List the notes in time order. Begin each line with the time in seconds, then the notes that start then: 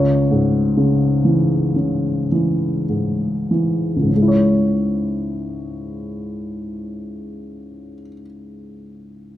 Already playing: C#2 C#5
0.31 G#2
0.77 C#3
1.25 E3
1.76 C#3
2.32 E3
2.89 G#2
3.51 E3
3.96 C#2
4.02 G#2
4.09 C#3
4.16 G#3
4.22 E4
4.28 C#5